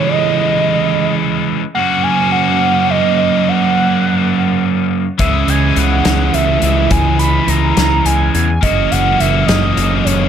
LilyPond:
<<
  \new Staff \with { instrumentName = "Analog synth lead" } { \time 6/8 \key cis \dorian \tempo 4. = 70 dis''2 r4 | fis''8 gis''8 fis''4 dis''8 dis''8 | fis''2 r4 | e''8 gis''8 fis''4 e''8 e''8 |
gis''8 b''8 ais''4 gis''8 gis''8 | dis''8 fis''8 e''8 dis''4 cis''8 | }
  \new Staff \with { instrumentName = "Distorted electric guitar" } { \time 6/8 \key cis \dorian <e gis cis' gis'>2. | <ais cis' fis'>2.~ | <ais cis' fis'>2. | <e gis cis' gis'>2.~ |
<e gis cis' gis'>2. | <ais cis' fis'>2. | }
  \new Staff \with { instrumentName = "Overdriven electric guitar" } { \clef bass \time 6/8 \key cis \dorian <cis e gis cis' e'>2. | <fis, cis fis ais cis' fis'>2.~ | <fis, cis fis ais cis' fis'>2. | <cis e gis cis' e'>2.~ |
<cis e gis cis' e'>2. | <fis, cis e ais cis' fis'>2. | }
  \new Staff \with { instrumentName = "Picked electric bass" } { \clef bass \time 6/8 \key cis \dorian r2. | r2. | r2. | cis,8 cis,8 cis,8 cis,8 cis,8 cis,8 |
cis,4 cis,8 cis,8 cis,8 e,8 | fis,,8 fis,,8 fis,,8 fis,,8 fis,,8 fis,,8 | }
  \new DrumStaff \with { instrumentName = "Drums" } \drummode { \time 6/8 r4. r4. | r4. r4. | r4. r4. | <hh bd>8 hh8 hh8 <hh sn>8 hh8 hh8 |
<hh bd>8 hh8 hh8 <hh sn>8 hh8 hh8 | <hh bd>8 hh8 hh8 <hh sn>8 hh8 hh8 | }
>>